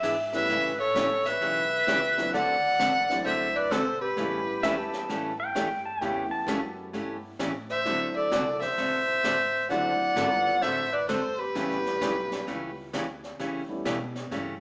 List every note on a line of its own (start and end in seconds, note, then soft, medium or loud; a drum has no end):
0.00 0.47 G#2 medium
0.00 0.15 E3 medium
0.00 0.15 B3 medium
0.00 0.15 D4 medium
0.00 0.15 G#4 medium
0.00 0.47 E5 loud
0.00 hi-hat pedal medium
0.00 ride medium
0.32 0.47 G3 medium
0.32 0.47 A3 medium
0.32 0.47 B3 medium
0.32 0.47 C#4 medium
0.32 0.47 E4 medium
0.32 0.77 B4 medium
0.32 0.77 E5 loud
0.32 snare soft
0.32 ride soft
0.49 0.93 A2 medium
0.49 0.71 C#3 medium
0.49 0.71 E3 medium
0.49 0.72 A3 medium
0.49 0.72 C#4 medium
0.49 0.72 G4 medium
0.49 brush sweep medium
0.49 snare soft
0.80 1.28 A4 medium
0.80 1.27 C#5 loud
0.95 1.39 A1 loud
0.95 1.07 C#3 medium
0.95 1.07 E3 medium
0.95 1.07 A3 medium
0.95 1.07 C#4 medium
0.95 1.07 G4 medium
0.95 snare medium
0.95 hi-hat pedal medium
1.25 2.34 B4 loud
1.25 2.33 E5 loud
1.25 snare soft
1.41 1.86 B1 medium
1.41 1.63 C#3 medium
1.41 1.63 E3 medium
1.41 1.63 A3 medium
1.41 1.64 C#4 medium
1.41 1.64 G4 medium
1.41 brush sweep soft
1.41 snare soft
1.87 2.32 C#2 medium
1.87 1.99 C#3 medium
1.87 1.99 E3 medium
1.87 1.99 A3 medium
1.87 1.99 C#4 medium
1.87 1.99 G4 medium
1.87 snare medium
1.87 hi-hat pedal soft
2.17 2.31 F#3 medium
2.17 2.31 A3 medium
2.17 2.31 C4 medium
2.17 2.32 D4 medium
2.17 2.32 E4 medium
2.17 snare soft
2.33 2.78 D2 medium
2.33 2.55 D3 medium
2.33 2.55 A3 medium
2.33 2.55 C4 medium
2.33 2.56 F#4 medium
2.33 2.56 A4 medium
2.33 3.22 D5 medium
2.33 3.22 F#5 loud
2.33 brush sweep soft
2.33 snare soft
2.79 3.24 A1 loud
2.79 2.91 D3 medium
2.79 2.91 A3 medium
2.79 2.91 C4 medium
2.79 2.91 F#4 medium
2.79 2.91 A4 medium
2.79 snare medium
2.79 hi-hat pedal medium
3.09 3.68 F#3 medium
3.09 3.68 A3 medium
3.09 3.68 C4 medium
3.09 3.68 D4 medium
3.09 3.68 E4 medium
3.09 snare soft
3.25 3.70 C2 medium
3.25 3.47 D3 medium
3.25 3.47 A3 medium
3.25 3.48 C4 medium
3.25 3.48 F#4 medium
3.25 3.48 A4 medium
3.25 3.57 C5 medium
3.25 3.57 E5 medium
3.25 brush sweep soft
3.25 snare soft
3.55 3.73 B4 medium
3.55 3.73 D5 medium
3.71 4.16 B1 medium
3.71 3.83 D3 medium
3.71 3.83 A3 medium
3.71 3.83 C4 medium
3.71 3.83 F#4 medium
3.71 4.00 A4 medium
3.71 3.83 A4 medium
3.71 4.00 C5 medium
3.71 snare medium
3.71 hi-hat pedal medium
4.01 5.35 G4 medium
4.01 5.35 B4 medium
4.16 4.61 A1 medium
4.16 4.39 C#3 medium
4.16 4.39 E3 medium
4.16 5.46 G3 medium
4.16 5.46 A3 medium
4.16 4.39 A3 medium
4.16 5.46 B3 medium
4.16 5.46 C#4 medium
4.16 4.39 C#4 medium
4.16 5.46 E4 medium
4.16 4.40 G4 medium
4.16 brush sweep soft
4.16 snare soft
4.63 5.08 E2 loud
4.63 4.75 C#3 medium
4.63 4.75 E3 medium
4.63 4.75 A3 medium
4.63 4.75 C#4 medium
4.63 4.75 G4 medium
4.63 4.78 E5 loud
4.63 snare medium
4.63 hi-hat pedal medium
4.78 5.38 A5 medium
4.93 snare soft
5.09 5.54 A2 medium
5.09 5.31 C#3 medium
5.09 5.31 E3 medium
5.09 5.31 A3 medium
5.09 5.32 C#4 medium
5.09 5.32 G4 medium
5.09 brush sweep medium
5.09 snare soft
5.40 5.85 G5 loud
5.55 6.00 G2 medium
5.55 5.67 C#3 medium
5.55 5.67 E3 medium
5.55 5.67 A3 medium
5.55 5.67 C#4 medium
5.55 5.67 G4 medium
5.55 snare medium
5.55 hi-hat pedal medium
5.86 6.01 A5 medium
6.00 6.46 E2 medium
6.00 6.23 C#3 medium
6.00 6.24 E3 medium
6.00 7.30 A3 medium
6.00 6.24 A3 medium
6.00 7.30 B3 medium
6.00 7.30 C#4 medium
6.00 6.24 C#4 medium
6.00 7.30 E4 medium
6.00 7.29 G4 medium
6.00 6.24 G4 medium
6.00 6.31 G5 medium
6.00 brush sweep soft
6.00 snare soft
6.31 6.56 A5 loud
6.47 6.92 F#2 loud
6.47 6.59 C#3 medium
6.47 6.59 E3 medium
6.47 6.60 A3 medium
6.47 6.60 C#4 medium
6.47 6.60 G4 medium
6.47 snare medium
6.47 hi-hat pedal medium
6.93 7.38 G2 medium
6.93 7.16 C#3 medium
6.93 7.16 E3 medium
6.93 7.16 A3 medium
6.93 7.16 C#4 medium
6.93 7.16 G4 medium
6.93 brush sweep medium
6.93 snare soft
7.39 7.84 A2 medium
7.39 7.51 C#3 medium
7.39 7.51 E3 medium
7.39 7.51 A3 medium
7.39 7.52 C#4 medium
7.39 7.52 G4 medium
7.39 snare medium
7.39 hi-hat pedal medium
7.69 8.13 C5 medium
7.69 8.13 E5 loud
7.69 snare soft
7.85 8.30 D2 medium
7.85 8.08 D3 medium
7.85 9.14 F#3 medium
7.85 9.14 A3 medium
7.85 8.08 A3 medium
7.85 9.14 C4 medium
7.85 8.08 C4 medium
7.85 9.14 D4 medium
7.85 9.14 E4 medium
7.85 8.08 F#4 medium
7.85 8.08 A4 medium
7.85 brush sweep medium
7.85 snare soft
8.16 8.59 A4 medium
8.16 8.59 D5 medium
8.31 8.76 C2 loud
8.31 8.43 D3 medium
8.31 8.43 A3 medium
8.31 8.44 C4 medium
8.31 8.44 F#4 medium
8.31 8.44 A4 medium
8.31 snare medium
8.31 hi-hat pedal medium
8.61 9.66 C5 medium
8.61 9.66 E5 loud
8.61 kick medium
8.61 snare soft
8.77 9.22 B1 medium
8.77 9.00 D3 medium
8.77 9.00 A3 medium
8.77 9.00 C4 medium
8.77 9.00 F#4 medium
8.77 9.00 A4 medium
8.77 brush sweep soft
8.77 snare soft
9.23 9.68 A1 medium
9.23 9.36 D3 medium
9.23 9.36 A3 medium
9.23 9.36 C4 medium
9.23 9.36 F#4 medium
9.23 9.36 A4 medium
9.23 snare medium
9.23 hi-hat pedal medium
9.69 10.15 F#1 medium
9.69 9.92 D3 medium
9.69 10.98 F#3 medium
9.69 10.98 A3 medium
9.69 9.92 A3 medium
9.69 10.99 C4 medium
9.69 9.92 C4 medium
9.69 10.99 D4 medium
9.69 10.99 E4 medium
9.69 9.92 F#4 medium
9.69 9.93 A4 medium
9.69 10.63 D5 loud
9.69 10.64 F#5 loud
9.69 brush sweep soft
9.69 snare soft
10.16 10.61 G1 loud
10.16 10.28 D3 medium
10.16 10.28 A3 medium
10.16 10.28 C4 medium
10.16 10.28 F#4 medium
10.16 10.28 A4 medium
10.16 snare medium
10.16 hi-hat pedal medium
10.62 11.07 A1 medium
10.62 10.85 D3 medium
10.62 10.85 A3 medium
10.62 10.85 C4 medium
10.62 10.85 F#4 medium
10.62 10.85 A4 medium
10.62 10.93 C5 medium
10.62 10.94 E5 loud
10.62 brush sweep soft
10.62 snare soft
10.92 11.08 B4 medium
10.92 11.08 D5 medium
11.08 11.53 F#1 medium
11.08 11.20 D3 medium
11.08 11.20 A3 medium
11.08 11.20 C4 medium
11.08 11.21 F#4 medium
11.08 11.40 A4 medium
11.08 11.21 A4 medium
11.08 11.40 C5 medium
11.08 snare medium
11.08 hi-hat pedal medium
11.38 12.77 G4 medium
11.38 12.77 B4 medium
11.54 11.99 A1 medium
11.54 11.77 C#3 medium
11.54 11.77 E3 medium
11.54 12.83 G3 medium
11.54 12.83 A3 medium
11.54 11.77 A3 medium
11.54 12.83 B3 medium
11.54 12.83 C#4 medium
11.54 11.77 C#4 medium
11.54 12.83 E4 medium
11.54 11.77 G4 medium
11.54 brush sweep soft
11.54 snare soft
11.71 snare soft
11.86 snare soft
12.01 12.46 B1 loud
12.01 12.13 C#3 medium
12.01 12.13 E3 medium
12.01 12.13 A3 medium
12.01 12.13 C#4 medium
12.01 12.13 G4 medium
12.01 snare medium
12.01 hi-hat pedal medium
12.32 snare medium
12.47 12.92 C#2 medium
12.47 12.69 C#3 medium
12.47 12.69 E3 medium
12.47 12.69 A3 medium
12.47 12.69 C#4 medium
12.47 12.70 G4 medium
12.47 brush sweep soft
12.47 snare soft
12.93 13.38 D2 medium
12.93 13.05 C#3 medium
12.93 13.05 E3 medium
12.93 13.05 A3 medium
12.93 13.05 C#4 medium
12.93 13.05 G4 medium
12.93 snare medium
12.93 hi-hat pedal medium
13.24 snare soft
13.39 13.84 E2 medium
13.39 13.61 C#3 medium
13.39 13.61 E3 medium
13.39 13.61 A3 medium
13.39 13.62 C#4 medium
13.39 13.62 G4 medium
13.39 brush sweep medium
13.39 snare soft
13.68 13.83 G3 medium
13.68 13.83 A3 medium
13.68 13.83 B3 medium
13.68 13.83 C#4 medium
13.68 13.84 E4 medium
13.85 14.30 B2 loud
13.85 13.97 C#3 medium
13.85 13.97 E3 medium
13.85 13.97 A3 medium
13.85 13.97 C#4 loud
13.85 13.97 G4 medium
13.85 snare medium
13.85 hi-hat pedal medium
14.15 snare soft
14.31 14.60 G2 medium
14.31 14.53 C#3 medium
14.31 14.54 E3 medium
14.31 14.54 A3 medium
14.31 14.54 C#4 medium
14.31 14.54 G4 medium
14.31 brush sweep medium
14.31 snare soft